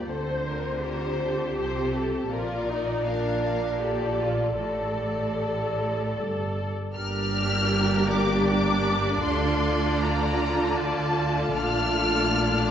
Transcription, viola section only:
0.06 0.82 C5 soft
0.83 2.31 G4 soft
2.31 2.67 F4 medium
2.68 3.05 D#4 medium
3.06 3.82 D4 soft
3.81 4.20 G4 medium
4.21 4.59 F4 soft
4.59 6.72 A4 soft
6.96 11.51 D4 medium
6.96 9.20 G4 medium
9.23 12.71 F4 medium
11.56 12.71 D4 medium

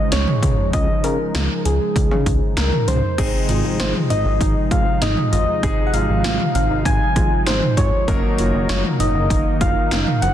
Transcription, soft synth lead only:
0.00 0.14 D#5 loud
0.12 0.75 C#5 medium
0.73 1.03 D#5 loud
1.04 1.61 A#4 medium
1.65 2.53 G#4 medium
2.57 2.89 A#4 medium
2.88 3.79 C5 medium
3.80 3.93 C5 medium
4.10 4.67 D#5 loud
4.72 5.04 F5 loud
5.02 5.32 D#5 loud
5.32 5.88 D#5 loud
5.87 5.95 F#5 medium
5.94 6.54 F5 loud
6.55 6.87 F5 loud
6.86 7.48 G#5 loud
7.47 7.79 C5 loud
7.78 8.69 C#5 loud
8.69 8.83 C#5 medium
9.00 9.57 D#5 loud
9.61 10.24 F5 loud
10.22 10.34 F#5 loud

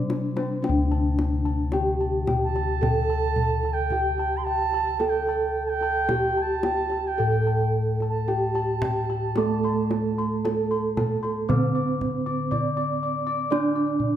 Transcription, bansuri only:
2.44 3.75 A5 loud
3.73 4.39 G5 medium
4.37 4.46 C6 medium
4.44 5.11 A5 loud
5.09 5.66 G5 medium
5.66 6.44 G5 loud
5.66 5.70 A5 loud
6.42 7.09 A5 medium
7.07 7.77 G5 medium
8.10 10.81 A5 medium

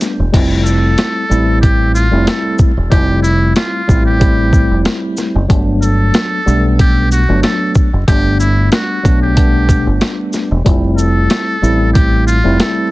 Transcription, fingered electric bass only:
0.19 0.32 E1 medium
0.34 0.94 F1 loud
1.31 2.09 A1 loud
2.13 2.26 F1 medium
2.77 2.90 E1 medium
2.92 3.52 F1 loud
3.89 4.67 A1 loud
4.71 4.84 F1 medium
5.36 5.49 F#1 medium
5.50 6.10 G1 loud
6.47 7.25 B1 medium
7.29 7.42 G1 loud
7.93 8.07 F#1 medium
8.08 8.68 G1 loud
9.05 9.83 B1 loud
9.87 10.00 G1 loud
10.51 10.65 E1 medium
10.66 11.27 F1 loud
11.63 12.41 A1 loud
12.45 12.58 F1 medium

